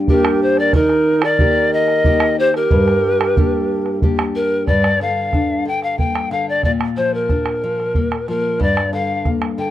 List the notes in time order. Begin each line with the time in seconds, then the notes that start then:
Already playing: G2
0.08 A#3 D4 G4 A#4, bombo low
0.25 bombo rim
0.42 G4 C5
0.57 A#4 D5, bombo rim
0.73 D#3 D#4 A#4, bombo rim, bombo low
0.89 bombo rim
1.22 A#4 D5, bombo rim
1.39 A#3 D#4 G4, bombo low
1.73 A#4 D#5
1.88 bombo rim
2.04 A#3 D#4 G4, bombo low
2.20 bombo rim
2.39 G4 C5
2.54 G4 A#4, bombo rim
2.71 G2, bombo low
2.88 bombo rim
3.21 bombo rim
3.37 A#3 D4 G4, bombo low
3.86 bombo rim
4.02 A#3 D4 G4, bombo low
4.19 bombo rim
4.36 A#4
4.67 G2 D5, bombo rim, bombo low
4.84 bombo rim
5.00 D3 F5, bombo rim
5.33 D4, bombo rim, bombo low
5.65 D3 G5
5.82 F5, bombo rim
5.98 A#3 G5, bombo low
6.15 bombo rim
6.31 D3 F5, bombo rim
6.49 D5
6.63 A#2 D5, bombo rim, bombo low
6.81 bombo rim
6.97 F3 C5, bombo rim
7.14 A#4
7.29 D4, bombo rim, bombo low
7.46 bombo rim
7.64 F3
7.80 bombo rim
7.95 A#3, bombo low
8.12 bombo rim
8.28 F3 A#4, bombo rim
8.60 G2 D5, bombo rim, bombo low
8.77 bombo rim
8.93 D3 F5, bombo rim
9.25 A#3, bombo rim, bombo low
9.42 bombo rim
9.58 D3 G5